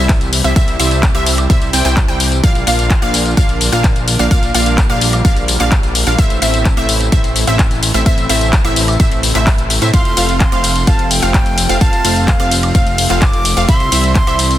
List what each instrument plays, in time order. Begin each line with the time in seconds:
Already playing: analog synth bass C2, analog synth pad C3 E3 G3, supersaw synth G3 C4 E4 C5 E5, synth pluck E5
0.09 kick, clap, closed hi-hat, tambourine
0.21 closed hi-hat, tambourine
0.33 open hi-hat, tambourine
0.44 analog synth bass C2, supersaw synth G3 C4 E4 C5 E5, synth pluck E5, closed hi-hat, tambourine
0.56 analog synth bass C2, supersaw synth G3 C4 E4 C5 E5, synth pluck E5, kick, closed hi-hat, tambourine
0.68 closed hi-hat, tambourine
0.80 analog synth bass C2, supersaw synth G3 C4 E4 C5 E5, synth pluck E5, open hi-hat, tambourine
0.91 closed hi-hat, tambourine
1.03 kick, clap, closed hi-hat, tambourine
1.15 analog synth bass C2, supersaw synth G3 C4 E4 C5 E5, synth pluck E5, closed hi-hat, tambourine, high woodblock
1.26 open hi-hat, tambourine
1.38 closed hi-hat, tambourine, high woodblock
1.50 analog synth bass C2, supersaw synth G3 C4 E4 C5 E5, synth pluck E5, kick, closed hi-hat, tambourine
1.62 closed hi-hat, tambourine
1.73 analog synth bass C2, supersaw synth G3 C4 E4 C5 G5, synth pluck G5, open hi-hat, tambourine
1.85 analog synth bass C2, supersaw synth G3 C4 E4 C5 G5, synth pluck G5, clap, closed hi-hat, tambourine
1.97 kick, clap, closed hi-hat, tambourine
2.08 analog synth bass C2, supersaw synth G3 C4 E4 C5 G5, synth pluck G5, closed hi-hat, tambourine
2.20 open hi-hat, tambourine
2.32 closed hi-hat, tambourine
2.44 analog synth bass A#1, analog synth pad D3 F3 A#3, supersaw synth A#3 D4 F4 D5 F5, synth pluck F5, kick, closed hi-hat, tambourine
2.55 closed hi-hat, tambourine
2.67 analog synth bass A#1, supersaw synth A#3 D4 F4 D5 F5, synth pluck F5, open hi-hat, tambourine
2.79 closed hi-hat, tambourine
2.90 kick, clap, closed hi-hat, tambourine
3.02 analog synth bass A#1, supersaw synth A#3 D4 F4 D5 F5, synth pluck F5, closed hi-hat, tambourine, high woodblock
3.14 open hi-hat, tambourine
3.26 closed hi-hat, tambourine
3.37 analog synth bass A#1, supersaw synth A#3 D4 F4 D5 F5, synth pluck F5, kick, closed hi-hat, tambourine
3.49 closed hi-hat, tambourine
3.61 open hi-hat, tambourine
3.72 analog synth bass A#1, supersaw synth A#3 D4 F4 D5 F5, synth pluck F5, closed hi-hat, tambourine
3.84 kick, clap, closed hi-hat, tambourine
3.96 closed hi-hat, tambourine
4.08 open hi-hat, tambourine
4.19 analog synth bass A#1, supersaw synth A#3 D4 F4 D5 F5, synth pluck F5, closed hi-hat, tambourine
4.31 analog synth bass A#1, analog synth pad G3, supersaw synth A#3 D4 F4 D5 F5, synth pluck F5, kick, closed hi-hat, tambourine
4.43 closed hi-hat, tambourine
4.55 analog synth bass A#1, supersaw synth A#3 D4 F4 D5 F5, synth pluck F5, open hi-hat, tambourine
4.66 closed hi-hat, tambourine
4.78 kick, clap, closed hi-hat, tambourine
4.90 analog synth bass A#1, supersaw synth A#3 D4 F4 D5 F5, synth pluck F5, closed hi-hat, tambourine, high woodblock
5.01 open hi-hat, tambourine
5.13 closed hi-hat, tambourine, high woodblock
5.25 analog synth bass A#1, supersaw synth A#3 D4 F4 D5 F5, synth pluck F5, kick, closed hi-hat, tambourine
5.37 closed hi-hat, tambourine
5.48 open hi-hat, tambourine
5.60 analog synth bass A#1, supersaw synth A#3 D4 F4 D5 F5, synth pluck F5, clap, closed hi-hat, tambourine
5.72 kick, clap, closed hi-hat, tambourine
5.83 closed hi-hat, tambourine
5.95 open hi-hat, tambourine
6.07 analog synth bass A#1, supersaw synth A#3 D4 F4 D5 F5, synth pluck F5, closed hi-hat, tambourine
6.19 analog synth bass A1, analog synth pad C3 E3 A3, supersaw synth A3 C4 E4 C5 E5, synth pluck E5, kick, closed hi-hat, tambourine
6.30 closed hi-hat, tambourine
6.42 analog synth bass A1, supersaw synth A3 C4 E4 C5 E5, synth pluck E5, open hi-hat, tambourine
6.54 closed hi-hat, tambourine
6.65 kick, clap, closed hi-hat, tambourine
6.77 analog synth bass A1, supersaw synth A3 C4 E4 C5 E5, synth pluck E5, closed hi-hat, tambourine, high woodblock
6.89 open hi-hat, tambourine
7.01 closed hi-hat, tambourine
7.12 analog synth bass A1, supersaw synth A3 C4 E4 C5 E5, synth pluck E5, kick, closed hi-hat, tambourine
7.24 closed hi-hat, tambourine
7.36 open hi-hat, tambourine
7.47 analog synth bass A1, supersaw synth A3 C4 E4 C5 E5, synth pluck E5, closed hi-hat, tambourine
7.59 kick, clap, closed hi-hat, tambourine
7.71 closed hi-hat, tambourine
7.83 open hi-hat, tambourine
7.94 analog synth bass A1, supersaw synth A3 C4 E4 C5 E5, synth pluck E5, closed hi-hat, tambourine
8.06 analog synth bass A1, supersaw synth A3 C4 E4 C5 E5, synth pluck E5, kick, closed hi-hat, tambourine
8.18 closed hi-hat, tambourine
8.29 analog synth bass A1, supersaw synth A3 C4 E4 C5 E5, synth pluck E5, open hi-hat, tambourine
8.41 closed hi-hat, tambourine
8.53 kick, clap, closed hi-hat, tambourine
8.65 analog synth bass A1, supersaw synth A3 C4 E4 C5 E5, synth pluck E5, closed hi-hat, tambourine, high woodblock
8.76 open hi-hat, tambourine
8.88 closed hi-hat, tambourine, high woodblock
9.00 analog synth bass A1, supersaw synth A3 C4 E4 C5 E5, synth pluck E5, kick, closed hi-hat, tambourine
9.12 closed hi-hat, tambourine
9.23 open hi-hat, tambourine
9.35 analog synth bass A1, supersaw synth A3 C4 E4 C5 E5, synth pluck E5, clap, closed hi-hat, tambourine
9.47 kick, clap, open hi-hat, tambourine
9.58 closed hi-hat, tambourine
9.70 open hi-hat, tambourine
9.82 analog synth bass A2, supersaw synth A3 C4 E4 C5 E5, synth pluck E5, closed hi-hat, tambourine
9.94 analog synth bass F1, analog synth pad F3, supersaw synth A3 C4 F4 C5 F5, synth pluck F5, flute C6, kick, closed hi-hat, ride, tambourine
10.05 closed hi-hat, tambourine
10.17 analog synth bass F1, supersaw synth A3 C4 F4 C5 F5, synth pluck F5, open hi-hat, ride, tambourine
10.29 closed hi-hat, tambourine
10.40 flute C6, kick, clap, closed hi-hat, ride, tambourine
10.52 analog synth bass F1, supersaw synth A3 C4 F4 C5 F5, synth pluck F5, closed hi-hat, tambourine, high woodblock
10.64 open hi-hat, ride, tambourine
10.76 closed hi-hat, tambourine
10.87 analog synth bass F1, supersaw synth A3 C4 F4 C5 F5, synth pluck F5, flute A5, kick, closed hi-hat, ride, tambourine
10.99 closed hi-hat, tambourine
11.11 flute G5, open hi-hat, ride, tambourine
11.22 analog synth bass F1, supersaw synth A3 C4 F4 C5 F5, synth pluck F5, closed hi-hat, tambourine
11.34 kick, clap, closed hi-hat, ride, tambourine
11.46 closed hi-hat, tambourine
11.58 open hi-hat, ride, tambourine
11.69 analog synth bass F1, supersaw synth A3 C4 F4 C5 F5, synth pluck F5, closed hi-hat, tambourine
11.81 analog synth bass F1, supersaw synth A3 C4 F4 C5 F5, synth pluck F5, flute A5, kick, closed hi-hat, ride, tambourine
11.93 closed hi-hat, tambourine
12.04 analog synth bass F1, supersaw synth A3 C4 F4 C5 F5, synth pluck F5, open hi-hat, ride, tambourine
12.16 closed hi-hat, tambourine
12.28 flute F5, kick, clap, closed hi-hat, ride, tambourine
12.40 analog synth bass F1, supersaw synth A3 C4 F4 C5 F5, synth pluck F5, closed hi-hat, tambourine, high woodblock
12.51 open hi-hat, ride, tambourine
12.63 closed hi-hat, tambourine, high woodblock
12.75 analog synth bass F1, supersaw synth A3 C4 F4 C5 F5, synth pluck F5, kick, closed hi-hat, ride, tambourine
12.87 closed hi-hat, tambourine
12.98 open hi-hat, ride, tambourine
13.10 analog synth bass F1, supersaw synth A3 C4 F4 C5 F5, synth pluck F5, clap, closed hi-hat, tambourine
13.22 flute D6, kick, clap, closed hi-hat, ride, tambourine
13.33 closed hi-hat, tambourine
13.45 open hi-hat, ride, tambourine
13.57 analog synth bass F1, supersaw synth A3 C4 F4 C5 F5, synth pluck F5, closed hi-hat, tambourine
13.69 analog synth bass C2, analog synth pad E3 G3, supersaw synth C4 E4 C5 E5, synth pluck E5, flute C6, kick, closed hi-hat, ride, tambourine
13.80 closed hi-hat, tambourine
13.92 analog synth bass C2, supersaw synth G3 C4 E4 C5 E5, synth pluck E5, open hi-hat, ride, tambourine
14.04 closed hi-hat, tambourine
14.15 flute C6, kick, clap, closed hi-hat, ride, tambourine
14.27 analog synth bass C2, supersaw synth G3 C4 E4 C5 E5, synth pluck E5, closed hi-hat, tambourine, high woodblock
14.39 open hi-hat, ride, tambourine
14.51 closed hi-hat, tambourine